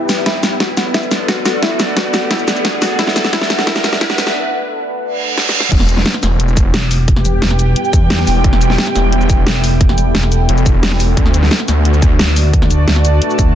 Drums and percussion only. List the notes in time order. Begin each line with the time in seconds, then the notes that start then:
0.09 snare, open hi-hat, shaker
0.26 kick, snare, closed hi-hat
0.43 snare, closed hi-hat, shaker
0.60 kick, snare, closed hi-hat
0.77 snare, closed hi-hat, shaker
0.94 kick, snare, closed hi-hat
1.03 shaker
1.11 snare, closed hi-hat, shaker
1.28 kick, snare, closed hi-hat
1.45 snare, open hi-hat, shaker
1.63 kick, snare, closed hi-hat
1.80 snare, closed hi-hat, shaker
1.97 kick, snare, closed hi-hat
2.14 snare, closed hi-hat, shaker
2.31 kick, snare, closed hi-hat
2.39 shaker
2.48 snare, closed hi-hat, shaker
2.56 shaker
2.65 kick, snare, closed hi-hat
2.82 snare, open hi-hat, shaker
2.99 kick, snare, closed hi-hat
3.07 snare
3.16 snare, closed hi-hat, shaker
3.24 snare
3.33 kick, snare, closed hi-hat
3.41 snare
3.50 snare, closed hi-hat, shaker
3.59 snare
3.67 kick, snare, closed hi-hat
3.76 snare, shaker
3.84 snare, closed hi-hat, shaker
3.93 snare
4.01 kick, snare, closed hi-hat
4.10 snare
4.18 snare, open hi-hat, shaker
4.27 snare
5.38 snare
5.49 snare
5.60 snare
5.72 kick, closed hi-hat, crash
5.80 snare
5.89 closed hi-hat, shaker
5.97 snare
6.06 snare, closed hi-hat
6.14 snare
6.23 snare, closed hi-hat, shaker
6.40 closed hi-hat
6.48 shaker
6.57 kick, closed hi-hat, shaker
6.74 snare, closed hi-hat
6.91 open hi-hat, shaker
7.08 kick, closed hi-hat
7.16 snare
7.25 closed hi-hat, shaker
7.42 snare, closed hi-hat
7.51 snare
7.59 closed hi-hat, shaker
7.76 closed hi-hat
7.85 shaker
7.93 kick, closed hi-hat, shaker
8.10 snare, closed hi-hat
8.19 snare
8.27 open hi-hat, shaker
8.44 kick, closed hi-hat
8.53 snare
8.61 closed hi-hat, shaker
8.70 snare
8.78 snare, closed hi-hat
8.87 snare
8.95 snare, closed hi-hat, shaker
9.12 closed hi-hat
9.21 shaker
9.30 kick, closed hi-hat, shaker
9.47 snare, closed hi-hat
9.64 open hi-hat, shaker
9.81 kick, closed hi-hat
9.89 snare
9.98 closed hi-hat, shaker
10.15 snare, closed hi-hat
10.23 snare
10.32 closed hi-hat, shaker
10.49 closed hi-hat
10.57 shaker
10.66 kick, closed hi-hat, shaker
10.83 snare, closed hi-hat
10.92 snare
11.00 open hi-hat, shaker
11.17 kick, closed hi-hat
11.26 snare
11.34 closed hi-hat, shaker
11.43 snare
11.51 snare, closed hi-hat
11.60 snare
11.68 snare, closed hi-hat, shaker
11.85 closed hi-hat
11.94 shaker
12.02 kick, closed hi-hat, shaker
12.19 snare, closed hi-hat
12.36 open hi-hat, shaker
12.53 kick, closed hi-hat
12.62 snare
12.71 closed hi-hat, shaker
12.88 snare, closed hi-hat
12.96 snare
13.05 closed hi-hat, shaker
13.22 closed hi-hat
13.30 shaker
13.39 kick, closed hi-hat, shaker